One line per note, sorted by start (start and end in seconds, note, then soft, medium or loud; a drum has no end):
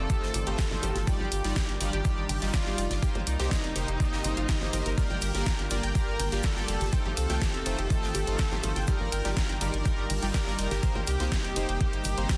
0.00 1.05 D#3 medium
0.00 1.05 A3 medium
0.00 1.05 C4 medium
0.00 2.99 F4 medium
0.00 0.98 A4 loud
0.10 0.27 A3 medium
0.10 0.27 D#4 medium
0.10 0.27 F4 medium
0.10 0.21 G4 loud
0.10 0.27 C5 medium
0.10 0.21 G5 medium
0.10 kick loud
0.10 closed hi-hat medium
0.10 shaker medium
0.22 0.31 G1 medium
0.22 snare medium
0.34 0.44 G1 loud
0.34 0.42 D5 medium
0.34 0.42 D6 medium
0.34 open hi-hat loud
0.34 high conga medium
0.34 shaker medium
0.47 0.56 G1 medium
0.47 0.57 A3 medium
0.47 0.57 D#4 medium
0.47 0.57 F4 medium
0.47 0.57 G4 loud
0.47 0.57 C5 loud
0.47 0.57 G5 medium
0.47 closed hi-hat soft
0.47 closed hi-hat medium
0.58 kick loud
0.58 snare loud
0.58 closed hi-hat medium
0.58 shaker medium
0.71 0.80 G1 medium
0.71 0.88 A3 medium
0.71 0.88 D#4 medium
0.71 0.88 F4 medium
0.71 0.88 C5 medium
0.71 0.78 D5 medium
0.71 0.78 D6 medium
0.71 snare soft
0.71 low conga medium
0.83 0.92 G1 loud
0.83 0.94 G4 loud
0.83 0.94 G5 medium
0.83 open hi-hat loud
0.83 low conga medium
0.83 shaker medium
0.95 1.04 G1 loud
0.95 snare soft
0.95 closed hi-hat medium
0.95 high bongo medium
0.95 high conga medium
1.07 3.01 D#3 medium
1.07 3.01 G3 medium
1.07 1.25 G3 medium
1.07 3.01 D4 medium
1.07 1.25 D#4 medium
1.07 1.25 F4 medium
1.07 1.71 G4 loud
1.07 1.25 D5 loud
1.07 1.15 D5 medium
1.07 1.15 D6 medium
1.07 kick loud
1.07 closed hi-hat medium
1.07 shaker medium
1.20 1.29 G1 medium
1.20 1.30 G4 loud
1.20 1.30 G5 medium
1.20 low conga medium
1.32 1.41 G1 loud
1.32 open hi-hat loud
1.32 shaker medium
1.44 1.53 G1 medium
1.44 1.55 G3 medium
1.44 1.55 D#4 medium
1.44 1.55 F4 medium
1.44 1.51 D5 medium
1.44 1.55 D5 loud
1.44 1.51 D6 medium
1.44 snare soft
1.44 closed hi-hat medium
1.44 high bongo medium
1.56 1.67 G4 loud
1.56 1.67 G5 medium
1.56 kick loud
1.56 snare loud
1.56 closed hi-hat medium
1.56 shaker medium
1.69 1.77 G1 medium
1.69 closed hi-hat soft
1.80 1.90 G1 loud
1.80 1.92 G3 medium
1.80 1.92 D#4 medium
1.80 1.92 F4 medium
1.80 2.44 G4 loud
1.80 1.88 D5 medium
1.80 1.92 D5 loud
1.80 1.88 D6 medium
1.80 open hi-hat loud
1.80 high conga medium
1.80 shaker medium
1.93 2.02 G1 medium
1.93 2.04 G4 loud
1.93 2.04 G5 medium
1.93 closed hi-hat medium
2.05 2.23 G3 medium
2.05 2.23 D#4 medium
2.05 2.23 F4 medium
2.05 2.22 D5 medium
2.05 kick loud
2.05 closed hi-hat medium
2.05 shaker medium
2.18 2.26 G1 medium
2.18 2.24 D5 medium
2.18 2.24 D6 medium
2.29 2.39 G1 loud
2.29 2.40 G4 loud
2.29 2.40 G5 medium
2.29 open hi-hat medium
2.29 open hi-hat loud
2.29 high conga medium
2.42 2.51 G1 medium
2.42 2.52 G3 medium
2.42 2.52 D#4 medium
2.42 2.52 F4 medium
2.42 2.52 D5 loud
2.42 snare soft
2.42 closed hi-hat medium
2.53 3.18 F4 loud
2.53 2.61 D5 medium
2.53 2.61 D6 medium
2.53 kick loud
2.53 snare loud
2.53 closed hi-hat medium
2.53 shaker loud
2.65 2.75 G1 medium
2.65 2.83 G3 medium
2.65 2.83 D#4 medium
2.65 2.83 F4 medium
2.65 2.77 G4 loud
2.65 2.83 D5 loud
2.65 2.77 G5 medium
2.65 snare soft
2.78 2.87 F1 loud
2.78 open hi-hat loud
2.78 shaker medium
2.90 2.99 G1 medium
2.90 2.98 D5 medium
2.90 2.98 D6 medium
2.90 snare medium
2.90 closed hi-hat medium
2.90 high conga medium
3.02 4.96 C3 medium
3.02 4.96 G3 medium
3.02 3.20 A#3 loud
3.02 4.96 A#3 medium
3.02 3.20 D#4 medium
3.02 4.96 D#4 medium
3.02 3.20 G4 medium
3.02 3.14 G4 loud
3.02 3.20 C5 loud
3.02 3.14 G5 medium
3.02 kick loud
3.02 closed hi-hat medium
3.02 shaker medium
3.15 3.24 G1 medium
3.15 closed hi-hat soft
3.15 low conga loud
3.27 3.36 C2 loud
3.27 4.88 D#4 loud
3.27 3.34 D5 medium
3.27 3.34 D6 medium
3.27 open hi-hat loud
3.27 shaker medium
3.39 3.48 C2 medium
3.39 3.50 A#3 medium
3.39 3.50 D#4 medium
3.39 3.50 G4 medium
3.39 3.50 G4 loud
3.39 3.50 C5 loud
3.39 3.50 G5 medium
3.39 snare medium
3.39 closed hi-hat medium
3.39 high bongo medium
3.51 kick loud
3.51 snare loud
3.51 closed hi-hat medium
3.51 shaker loud
3.64 3.73 F1 medium
3.64 3.71 D5 medium
3.64 3.71 D6 medium
3.64 closed hi-hat soft
3.76 3.85 F1 loud
3.76 3.87 A#3 medium
3.76 3.87 D#4 medium
3.76 3.87 G4 medium
3.76 3.87 G4 loud
3.76 3.87 C5 loud
3.76 3.87 G5 medium
3.76 open hi-hat loud
3.76 high conga medium
3.76 shaker medium
3.88 3.97 F1 medium
3.88 closed hi-hat soft
4.00 4.18 A#3 medium
4.00 4.18 D#4 medium
4.00 4.18 G4 medium
4.00 4.18 C5 medium
4.00 4.07 D5 medium
4.00 4.07 D6 medium
4.00 kick loud
4.00 closed hi-hat medium
4.00 shaker medium
4.13 4.21 G1 medium
4.13 4.23 G4 loud
4.13 4.23 G5 medium
4.13 snare medium
4.24 4.34 G1 loud
4.24 4.42 A#3 medium
4.24 4.42 D#4 medium
4.24 4.32 G4 medium
4.24 4.42 G4 medium
4.24 4.42 C5 medium
4.24 4.32 G5 medium
4.24 open hi-hat loud
4.24 high conga medium
4.24 shaker medium
4.37 4.46 G1 medium
4.37 4.41 F4 loud
4.37 4.41 F5 medium
4.37 closed hi-hat medium
4.37 closed hi-hat soft
4.49 4.60 G4 medium
4.49 4.60 G5 medium
4.49 kick loud
4.49 snare loud
4.49 closed hi-hat medium
4.49 shaker medium
4.61 4.70 G1 medium
4.61 4.71 A#3 medium
4.61 4.71 D#4 medium
4.61 4.71 G4 medium
4.61 4.71 C5 medium
4.61 snare soft
4.61 low conga medium
4.73 4.83 G1 loud
4.73 4.84 A#3 loud
4.73 4.84 D#4 medium
4.73 4.84 G4 medium
4.73 4.84 A#4 medium
4.73 4.84 C5 loud
4.73 4.84 A#5 medium
4.73 open hi-hat loud
4.73 low conga medium
4.73 shaker medium
4.86 4.95 G1 medium
4.86 4.90 A#4 loud
4.86 4.90 A#5 medium
4.86 snare soft
4.86 closed hi-hat medium
4.86 high bongo medium
4.86 high conga medium
4.98 6.91 D3 medium
4.98 6.91 G3 medium
4.98 6.91 A#3 medium
4.98 5.15 A#3 medium
4.98 10.79 F4 medium
4.98 5.15 F4 medium
4.98 5.15 G4 medium
4.98 5.61 A#4 loud
4.98 5.15 D5 loud
4.98 kick loud
4.98 closed hi-hat medium
4.98 ride medium
4.98 shaker medium
5.10 5.19 G1 medium
5.10 5.17 G5 loud
5.10 5.17 G6 medium
5.10 low conga medium
5.21 5.31 G1 loud
5.21 5.33 G4 loud
5.21 5.33 G5 medium
5.21 open hi-hat loud
5.21 ride medium
5.21 shaker medium
5.34 5.43 G1 medium
5.34 5.45 A#3 medium
5.34 5.45 F4 medium
5.34 5.45 G4 medium
5.34 5.45 D5 loud
5.34 snare medium
5.34 closed hi-hat medium
5.34 high bongo medium
5.46 5.54 G5 loud
5.46 5.54 G6 medium
5.46 kick loud
5.46 snare loud
5.46 closed hi-hat medium
5.46 ride medium
5.46 shaker medium
5.59 5.68 G1 medium
5.59 5.69 G4 loud
5.59 5.69 G5 medium
5.59 closed hi-hat soft
5.70 5.80 G1 loud
5.70 5.82 A#3 medium
5.70 5.82 F4 medium
5.70 5.82 G4 medium
5.70 6.35 A#4 loud
5.70 5.82 D5 loud
5.70 open hi-hat loud
5.70 ride medium
5.70 high conga medium
5.70 shaker medium
5.83 5.92 G1 medium
5.83 5.90 G5 loud
5.83 5.90 G6 medium
5.83 closed hi-hat medium
5.95 6.13 A#3 medium
5.95 6.13 F4 medium
5.95 6.13 G4 medium
5.95 6.06 G4 loud
5.95 6.13 D5 medium
5.95 6.06 G5 medium
5.95 kick loud
5.95 closed hi-hat medium
5.95 ride medium
5.95 shaker medium
6.08 6.16 G1 medium
6.19 6.29 G1 loud
6.19 6.27 G5 loud
6.19 6.27 G6 medium
6.19 open hi-hat medium
6.19 open hi-hat loud
6.19 ride medium
6.19 high conga medium
6.32 6.41 G1 loud
6.32 6.43 A#3 medium
6.32 6.43 F4 medium
6.32 6.43 G4 medium
6.32 6.43 G4 loud
6.32 6.43 D5 loud
6.32 6.43 G5 medium
6.32 snare soft
6.32 closed hi-hat medium
6.43 7.08 A4 loud
6.43 kick loud
6.43 snare loud
6.43 closed hi-hat medium
6.43 ride medium
6.43 shaker loud
6.56 6.65 G1 medium
6.56 6.74 A#3 medium
6.56 6.74 F4 medium
6.56 6.74 G4 medium
6.56 6.74 D5 loud
6.56 6.64 G5 loud
6.56 6.64 G6 medium
6.56 snare soft
6.68 6.78 F1 loud
6.68 6.79 G4 loud
6.68 6.80 G5 medium
6.68 open hi-hat loud
6.68 ride medium
6.68 shaker medium
6.81 6.90 G1 medium
6.81 snare medium
6.81 closed hi-hat soft
6.81 high conga medium
6.93 8.86 D#3 medium
6.93 7.10 A3 medium
6.93 8.86 A3 medium
6.93 8.86 C4 medium
6.93 7.10 D#4 medium
6.93 7.10 F4 medium
6.93 7.10 C5 loud
6.93 7.00 G5 loud
6.93 7.00 G6 medium
6.93 kick loud
6.93 closed hi-hat medium
6.93 ride medium
6.93 shaker medium
7.05 7.14 G1 medium
7.05 7.16 G4 loud
7.05 7.16 G5 medium
7.05 low conga medium
7.17 7.26 C2 loud
7.17 8.79 A4 loud
7.17 open hi-hat loud
7.17 ride medium
7.17 shaker medium
7.30 7.38 C2 medium
7.30 7.40 A3 medium
7.30 7.40 D#4 medium
7.30 7.40 F4 medium
7.30 7.40 C5 loud
7.30 7.37 G5 loud
7.30 7.37 G6 medium
7.30 snare medium
7.30 closed hi-hat medium
7.30 high bongo medium
7.42 7.53 G4 medium
7.42 7.53 G5 medium
7.42 kick loud
7.42 snare loud
7.42 closed hi-hat medium
7.42 ride medium
7.42 shaker medium
7.54 7.63 F1 medium
7.54 closed hi-hat soft
7.66 7.75 F1 loud
7.66 7.77 A3 medium
7.66 7.77 D#4 medium
7.66 7.77 F4 medium
7.66 7.77 C5 loud
7.66 7.73 G5 medium
7.66 7.73 G6 medium
7.66 open hi-hat loud
7.66 ride medium
7.66 high conga medium
7.66 shaker medium
7.79 7.87 F1 medium
7.79 7.89 G4 loud
7.79 7.89 G5 medium
7.79 closed hi-hat medium
7.90 8.08 A3 medium
7.90 8.08 D#4 medium
7.90 8.08 F4 medium
7.90 8.08 C5 medium
7.90 kick loud
7.90 closed hi-hat medium
7.90 ride medium
7.90 shaker medium
8.03 8.12 G1 medium
8.03 8.10 G5 loud
8.03 8.10 G6 medium
8.03 snare medium
8.15 8.24 G1 medium
8.15 8.26 G4 loud
8.15 8.26 G5 medium
8.15 open hi-hat loud
8.15 ride medium
8.15 high conga medium
8.15 shaker medium
8.27 8.36 G1 loud
8.27 8.38 A3 medium
8.27 8.38 D#4 medium
8.27 8.38 F4 medium
8.27 8.38 C5 loud
8.27 closed hi-hat medium
8.27 closed hi-hat soft
8.39 8.47 G5 loud
8.39 8.47 G6 medium
8.39 kick loud
8.39 snare loud
8.39 closed hi-hat medium
8.39 ride medium
8.39 shaker medium
8.52 8.60 G1 medium
8.52 8.69 A3 medium
8.52 8.69 D#4 medium
8.52 8.69 F4 medium
8.52 8.62 G4 loud
8.52 8.69 C5 loud
8.52 8.62 G5 medium
8.52 snare soft
8.52 low conga medium
8.63 8.73 G1 loud
8.63 open hi-hat loud
8.63 ride medium
8.63 low conga medium
8.63 shaker medium
8.76 8.85 G1 medium
8.76 8.83 G5 loud
8.76 8.83 G6 medium
8.76 snare soft
8.76 closed hi-hat medium
8.76 high bongo medium
8.76 high conga medium
8.88 10.81 D#3 medium
8.88 9.05 G3 medium
8.88 12.38 G3 medium
8.88 10.81 D4 medium
8.88 9.05 D#4 medium
8.88 9.05 F4 medium
8.88 8.99 G4 loud
8.88 9.52 A#4 loud
8.88 9.05 D5 loud
8.88 8.99 G5 medium
8.88 kick loud
8.88 closed hi-hat medium
8.88 ride medium
8.88 shaker loud
9.01 9.09 G1 medium
9.01 low conga medium
9.12 9.22 G1 loud
9.12 9.20 G5 loud
9.12 9.20 G6 medium
9.12 open hi-hat medium
9.12 ride medium
9.12 shaker medium
9.25 9.34 G1 medium
9.25 9.35 G3 medium
9.25 9.35 D#4 medium
9.25 9.35 F4 medium
9.25 9.35 G4 loud
9.25 9.35 D5 loud
9.25 9.35 G5 medium
9.25 snare soft
9.25 closed hi-hat medium
9.25 high bongo medium
9.37 kick loud
9.37 snare loud
9.37 closed hi-hat medium
9.37 ride medium
9.37 shaker medium
9.49 9.58 G1 medium
9.49 9.56 G5 loud
9.49 9.56 G6 medium
9.49 closed hi-hat soft
9.61 9.70 G1 loud
9.61 9.72 G3 loud
9.61 9.72 D#4 medium
9.61 9.72 F4 medium
9.61 9.72 G4 loud
9.61 10.25 A#4 loud
9.61 9.72 D5 loud
9.61 9.72 G5 medium
9.61 open hi-hat loud
9.61 ride medium
9.61 high conga medium
9.61 shaker medium
9.74 9.82 G1 medium
9.74 closed hi-hat medium
9.85 10.03 G3 medium
9.85 10.03 D#4 medium
9.85 10.03 F4 medium
9.85 10.03 D5 medium
9.85 9.93 G5 loud
9.85 9.93 G6 medium
9.85 kick loud
9.85 closed hi-hat medium
9.85 ride medium
9.85 shaker medium
9.98 10.07 G1 medium
9.98 10.08 G4 loud
9.98 10.08 G5 medium
10.10 10.19 G1 loud
10.10 open hi-hat loud
10.10 open hi-hat medium
10.10 ride medium
10.10 high conga medium
10.22 10.31 G1 medium
10.22 10.33 G3 medium
10.22 10.33 D#4 medium
10.22 10.33 F4 medium
10.22 10.33 D5 loud
10.22 10.29 G5 loud
10.22 10.29 G6 medium
10.22 snare soft
10.22 closed hi-hat medium
10.34 10.45 G4 loud
10.34 10.98 A#4 loud
10.34 10.45 G5 medium
10.34 kick loud
10.34 snare loud
10.34 closed hi-hat medium
10.34 ride medium
10.34 shaker medium
10.47 10.56 G1 medium
10.47 10.64 G3 medium
10.47 10.64 D#4 medium
10.47 10.64 F4 medium
10.47 10.64 D5 loud
10.47 snare soft
10.59 10.68 F1 loud
10.59 10.66 G5 loud
10.59 10.66 G6 medium
10.59 open hi-hat loud
10.59 ride medium
10.59 shaker medium
10.71 10.80 G1 medium
10.71 10.82 G4 loud
10.71 10.82 G5 medium
10.71 snare medium
10.71 closed hi-hat medium
10.71 high conga medium
10.83 12.38 C3 medium
10.83 11.01 A#3 loud
10.83 12.38 A#3 medium
10.83 12.38 D#4 medium
10.83 11.01 D#4 medium
10.83 11.01 G4 medium
10.83 11.01 C5 loud
10.83 kick loud
10.83 closed hi-hat medium
10.83 ride medium
10.83 shaker medium
10.95 11.04 G1 medium
10.95 11.03 G5 loud
10.95 11.03 G6 medium
10.95 low conga loud
11.07 11.17 C2 loud
11.07 12.38 G4 loud
11.07 11.19 G4 loud
11.07 11.19 G5 medium
11.07 open hi-hat loud
11.07 ride medium
11.07 shaker medium
11.20 11.29 C2 medium
11.20 11.30 A#3 medium
11.20 11.30 D#4 medium
11.20 11.30 G4 medium
11.20 11.30 C5 loud
11.20 snare medium
11.20 closed hi-hat medium
11.20 high bongo medium
11.32 11.39 G5 loud
11.32 11.39 G6 medium
11.32 kick loud
11.32 snare loud
11.32 closed hi-hat medium
11.32 ride medium
11.32 shaker medium
11.44 11.53 F1 medium
11.44 11.55 G4 loud
11.44 11.55 G5 medium
11.44 closed hi-hat soft
11.56 11.65 F1 loud
11.56 11.67 A#3 loud
11.56 11.67 D#4 medium
11.56 11.67 G4 medium
11.56 11.67 C5 loud
11.56 open hi-hat loud
11.56 ride medium
11.56 high conga medium
11.56 shaker medium
11.69 11.77 F1 loud
11.69 11.76 G5 loud
11.69 11.76 G6 medium
11.69 closed hi-hat medium
11.81 11.98 A#3 medium
11.81 11.98 D#4 medium
11.81 11.98 G4 medium
11.81 11.92 G4 loud
11.81 11.98 C5 medium
11.81 11.92 G5 medium
11.81 kick loud
11.81 closed hi-hat medium
11.81 ride medium
11.93 12.02 G1 medium
11.93 closed hi-hat soft
12.04 12.14 G1 medium
12.04 open hi-hat loud
12.04 ride medium
12.04 high conga medium
12.04 shaker medium
12.18 12.26 G1 medium
12.18 12.28 A#3 medium
12.18 12.28 D#4 medium
12.18 12.28 G4 medium
12.18 12.28 C5 loud
12.18 12.24 C5 medium
12.18 12.24 C6 medium
12.18 closed hi-hat medium
12.29 12.34 G4 medium
12.29 12.34 G5 medium
12.29 kick loud
12.29 snare loud
12.29 closed hi-hat medium
12.29 ride medium
12.29 shaker medium